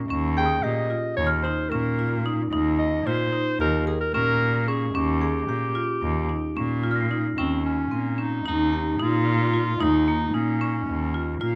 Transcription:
0.09 0.56 D#2 loud
0.09 0.24 C#4 medium
0.37 0.51 G#4 medium
0.37 0.64 G5 loud
0.45 2.10 D#6 medium
0.63 0.87 A#2 medium
0.63 0.78 G4 medium
0.63 1.16 D#5 medium
0.90 1.19 F4 medium
1.16 1.41 D#2 loud
1.16 1.29 C#5 medium
1.27 2.91 F6 medium
1.43 1.59 D#4 medium
1.43 1.71 C5 medium
1.70 2.42 A#2 loud
1.70 1.86 C#4 medium
1.70 2.24 A#4 medium
1.99 2.13 F4 medium
2.26 2.40 D#4 medium
2.52 2.99 D#2 loud
2.52 2.81 D#4 loud
2.79 3.08 D#5 loud
3.06 3.29 A#2 medium
3.06 3.21 F4 medium
3.06 3.60 C5 loud
3.33 3.47 D#4 medium
3.59 3.83 D#2 loud
3.59 3.74 G4 medium
3.59 3.86 A#4 loud
3.87 4.00 G#4 medium
3.87 4.01 A#4 medium
4.00 4.13 A#4 medium
4.14 4.84 A#2 loud
4.14 4.43 C#4 medium
4.14 4.69 A#4 loud
4.68 4.82 C#4 medium
4.68 4.96 G#4 medium
4.95 5.42 D#2 loud
4.95 5.09 C#4 loud
4.95 6.83 G4 medium
5.21 5.36 G#4 medium
5.48 5.72 A#2 medium
5.48 5.63 G4 medium
5.75 6.04 F4 medium
6.02 6.26 D#2 loud
6.29 6.44 D#4 medium
6.56 7.27 A#2 loud
6.56 6.71 C#4 medium
6.84 6.98 F4 medium
6.91 7.60 F6 medium
6.96 7.62 A#6 soft
7.01 7.65 C7 soft
7.11 7.25 D#4 medium
7.38 7.84 D#2 medium
7.38 7.63 C4 medium
7.38 7.66 C#4 loud
7.65 8.22 C#4 medium
7.91 8.38 A#2 medium
7.91 8.05 C4 medium
8.18 8.32 C#4 medium
8.18 8.46 D#4 medium
8.45 8.92 D#2 loud
8.45 8.60 D#4 medium
8.45 9.03 D#4 loud
8.73 8.87 G4 medium
9.00 9.70 A#2 loud
9.00 9.28 D#4 medium
9.00 9.84 F4 loud
9.54 9.68 F4 medium
9.80 10.27 D#2 loud
9.80 9.94 D#4 loud
9.80 10.36 D#4 loud
10.08 10.22 A#3 medium
10.34 10.81 A#2 medium
10.34 11.42 C#4 medium
10.34 10.48 D#4 medium
10.61 10.89 C#4 medium
10.87 11.34 D#2 loud
11.14 11.28 F4 medium
11.41 11.55 A#2 loud
11.41 11.55 F4 medium

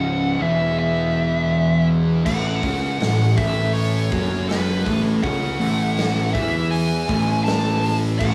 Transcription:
0.00 0.36 C#1 loud
0.00 0.39 C#2 loud
0.00 0.39 C#3 loud
0.00 0.42 F#5 loud
0.39 2.22 E1 loud
0.39 2.24 E2 medium
0.39 2.25 E3 loud
0.39 0.76 E5 loud
0.79 1.85 E5 medium
2.25 2.60 A1 loud
2.25 2.61 A2 loud
2.25 2.62 A3 loud
2.25 3.37 F#5 loud
2.25 kick loud
2.25 crash loud
2.63 2.97 C#2 loud
2.63 2.99 C#3 medium
2.63 2.99 C#4 loud
2.63 kick loud
2.63 open hi-hat medium
3.00 3.34 A1 medium
3.00 3.30 A2 medium
3.00 snare loud
3.00 open hi-hat medium
3.37 4.08 A1 medium
3.37 4.10 A2 loud
3.37 4.11 A3 loud
3.37 3.75 E5 medium
3.37 kick loud
3.37 open hi-hat medium
3.73 4.48 C#5 loud
3.73 open hi-hat medium
4.12 4.82 F#1 loud
4.12 4.85 F#2 medium
4.12 4.85 F#3 loud
4.12 kick loud
4.12 open hi-hat medium
4.49 5.00 B4 medium
4.49 snare loud
4.49 open hi-hat medium
4.86 5.21 A1 loud
4.86 5.22 A2 medium
4.86 5.23 A3 loud
4.86 kick loud
4.86 open hi-hat medium
5.23 5.58 C#2 loud
5.23 5.59 C#3 medium
5.23 5.59 C#4 loud
5.23 6.38 F#5 loud
5.23 kick loud
5.23 open hi-hat medium
5.60 6.30 A1 loud
5.60 6.33 A2 medium
5.60 6.34 A3 medium
5.60 open hi-hat medium
5.97 snare loud
5.97 open hi-hat medium
6.33 7.05 E2 loud
6.33 7.08 E3 loud
6.33 7.08 E4 loud
6.33 6.68 E5 loud
6.33 kick loud
6.33 open hi-hat medium
6.71 7.44 G#5 loud
6.71 open hi-hat medium
7.09 8.16 A1 loud
7.09 8.19 A2 loud
7.09 8.19 A3 loud
7.09 kick loud
7.09 open hi-hat medium
7.44 7.97 A5 loud
7.44 open hi-hat loud
7.48 snare loud
7.83 open hi-hat medium
8.19 8.34 A1 loud
8.19 8.34 A2 medium
8.19 8.34 A3 loud
8.19 8.34 F#5 loud
8.19 kick loud
8.19 crash loud

